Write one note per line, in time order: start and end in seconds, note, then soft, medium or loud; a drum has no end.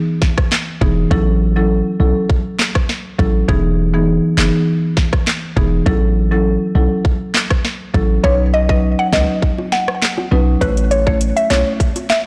0.22 kick loud
0.22 snare medium
0.38 kick medium
0.38 cross-stick loud
0.52 snare loud
0.52 clap medium
0.81 1.06 E1 medium
0.81 0.96 E3 medium
0.81 0.96 B3 medium
0.81 0.96 D#4 medium
0.81 0.97 G#4 medium
0.81 kick loud
1.11 1.82 A1 loud
1.11 1.52 F#3 medium
1.11 1.53 C#4 medium
1.11 1.53 E4 medium
1.11 1.53 A4 loud
1.11 kick loud
1.56 1.97 F#3 medium
1.56 1.97 C#4 medium
1.56 1.97 E4 medium
1.56 1.97 A4 medium
2.00 2.13 B1 medium
2.00 2.27 F#3 medium
2.00 2.27 C#4 medium
2.00 2.28 E4 medium
2.00 2.28 A4 medium
2.30 kick medium
2.59 snare loud
2.59 clap medium
2.75 kick medium
2.75 cross-stick loud
2.89 snare medium
3.19 3.44 A1 medium
3.19 3.34 F#3 medium
3.19 3.34 C#4 medium
3.19 3.34 E4 medium
3.19 3.34 A4 medium
3.19 kick medium
3.48 4.20 E1 loud
3.48 3.90 E3 medium
3.48 3.90 B3 medium
3.48 3.90 D#4 medium
3.48 3.90 G#4 loud
3.48 kick loud
3.94 4.34 E3 medium
3.94 4.34 B3 medium
3.94 4.34 D#4 medium
3.94 4.34 G#4 medium
4.37 4.51 F#1 medium
4.37 4.65 E3 medium
4.37 4.65 B3 medium
4.37 4.65 D#4 medium
4.37 4.65 G#4 medium
4.37 snare loud
4.37 clap medium
4.97 kick loud
4.97 snare medium
5.13 kick medium
5.13 cross-stick loud
5.27 snare loud
5.27 clap medium
5.56 5.81 E1 medium
5.56 5.71 E3 medium
5.56 5.72 B3 medium
5.56 5.72 D#4 medium
5.56 5.72 G#4 medium
5.56 kick medium
5.86 6.58 A1 loud
5.86 6.28 F#3 medium
5.86 6.28 C#4 medium
5.86 6.28 E4 medium
5.86 6.28 A4 loud
5.86 kick loud
6.31 6.72 F#3 medium
6.31 6.72 C#4 medium
6.31 6.72 E4 medium
6.31 6.72 A4 medium
6.75 6.88 B1 loud
6.75 7.03 F#3 medium
6.75 7.03 C#4 medium
6.75 7.03 E4 medium
6.75 7.03 A4 medium
7.05 kick medium
7.34 snare loud
7.34 clap medium
7.50 kick medium
7.50 cross-stick loud
7.65 snare medium
7.94 8.19 A1 medium
7.94 8.09 F#3 medium
7.94 8.09 C#4 medium
7.94 8.09 E4 medium
7.94 8.09 A4 medium
7.94 kick medium
8.23 8.95 B1 loud
8.23 8.65 F#3 medium
8.23 8.65 C#4 medium
8.23 8.66 D#4 medium
8.23 8.66 B4 loud
8.23 8.35 C#5 loud
8.23 kick loud
8.54 8.65 D#5 medium
8.69 9.09 F#3 medium
8.69 9.09 C#4 medium
8.69 9.10 D#4 medium
8.69 9.10 B4 medium
8.69 8.79 D#5 medium
8.69 kick medium
8.99 9.09 F#5 medium
9.12 9.26 C#2 medium
9.12 9.40 F#3 medium
9.12 9.40 C#4 medium
9.12 9.40 D#4 medium
9.12 9.40 B4 medium
9.12 9.25 D#5 medium
9.12 kick medium
9.12 snare loud
9.12 clap medium
9.12 high bongo medium
9.12 low bongo medium
9.42 kick medium
9.58 high bongo medium
9.72 9.84 F#5 medium
9.72 snare medium
9.88 cross-stick loud
10.02 snare loud
10.02 clap medium
10.18 high bongo medium
10.31 10.57 B1 medium
10.31 10.47 F#3 medium
10.31 10.47 C#4 medium
10.31 10.47 D#4 medium
10.31 10.47 B4 medium
10.31 high bongo medium
10.31 low bongo medium
10.61 11.33 A1 loud
10.61 11.03 A3 medium
10.61 11.03 C#4 medium
10.61 11.03 E4 medium
10.61 10.73 B4 loud
10.61 11.03 C#5 loud
10.61 kick loud
10.61 closed hi-hat medium
10.77 closed hi-hat medium
10.91 11.03 C#5 medium
10.91 closed hi-hat medium
11.07 11.47 A3 medium
11.07 11.47 C#4 medium
11.07 11.47 E4 medium
11.07 11.17 C#5 medium
11.07 11.47 C#5 medium
11.07 kick medium
11.21 closed hi-hat medium
11.37 11.47 E5 medium
11.37 closed hi-hat medium
11.50 11.64 B1 medium
11.50 11.78 A3 medium
11.50 11.78 C#4 medium
11.50 11.78 E4 medium
11.50 11.62 C#5 medium
11.50 11.78 C#5 medium
11.50 snare loud
11.50 clap medium
11.50 closed hi-hat medium
11.50 high bongo medium
11.50 low bongo medium
11.80 kick medium
11.80 closed hi-hat medium
11.96 closed hi-hat medium
11.96 high bongo medium
12.10 12.21 E5 medium
12.10 snare loud
12.10 clap medium
12.10 closed hi-hat medium